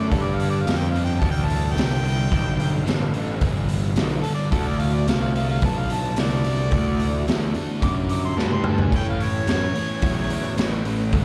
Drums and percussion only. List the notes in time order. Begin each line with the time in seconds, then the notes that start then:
0.12 kick, open hi-hat
0.40 open hi-hat
0.67 snare, open hi-hat
0.96 open hi-hat
1.22 kick, open hi-hat
1.50 open hi-hat
1.78 snare, open hi-hat
2.05 open hi-hat
2.32 kick, open hi-hat
2.60 open hi-hat
2.87 snare, open hi-hat
3.14 open hi-hat
3.41 kick, open hi-hat
3.69 open hi-hat
3.96 snare, open hi-hat
4.24 open hi-hat
4.52 kick, open hi-hat
4.80 open hi-hat
5.08 snare, open hi-hat
5.36 open hi-hat
5.62 kick, open hi-hat
5.90 open hi-hat
6.16 snare, open hi-hat
6.44 open hi-hat
6.71 kick, open hi-hat
6.99 open hi-hat
7.28 snare, open hi-hat
7.55 open hi-hat
7.82 kick, open hi-hat
8.09 open hi-hat
8.39 snare
8.51 high tom
8.64 mid tom
8.78 floor tom
8.92 kick, open hi-hat
9.20 open hi-hat
9.47 snare, open hi-hat
9.75 open hi-hat
10.02 kick, open hi-hat
10.30 open hi-hat
10.58 snare, open hi-hat
10.85 open hi-hat
11.13 kick, open hi-hat